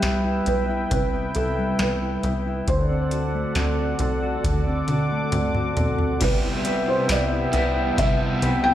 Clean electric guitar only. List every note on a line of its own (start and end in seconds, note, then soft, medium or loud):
0.00 1.56 G3 soft
0.00 0.46 B3 medium
0.00 0.23 E4 medium
0.24 0.68 E4 medium
0.47 1.12 B3 soft
0.69 1.34 E4 medium
0.91 2.67 C3 medium
1.13 1.78 B3 soft
1.35 2.00 E4 medium
1.58 2.77 G3 medium
1.79 2.23 B3 medium
2.02 2.45 E4 medium
2.24 2.77 B3 medium
2.46 2.77 E4 medium
2.68 4.43 D3 medium
2.90 3.56 C4 soft
3.12 3.77 F#4 medium
3.35 5.10 A3 medium
3.56 4.00 C4 soft
3.78 4.21 F#4 soft
4.00 4.66 C4 medium
4.22 4.88 F#4 medium
4.44 6.30 D3 medium
4.67 5.33 C4 soft
4.89 5.55 F#4 medium
5.11 6.30 A3 soft
5.33 5.78 C4 medium
5.56 5.99 F#4 medium
5.78 6.70 C4 soft
6.00 6.30 F#4 soft
6.22 7.97 C3 medium
6.44 6.87 E4 medium
6.67 7.09 B4 medium
6.88 7.31 E4 medium
7.10 7.53 B4 medium
7.32 7.75 E4 medium
7.54 8.42 B4 medium
7.76 8.19 E4 medium
7.98 8.74 C3 medium
8.21 8.63 E4 medium
8.43 8.74 B4 medium
8.65 8.74 E4 medium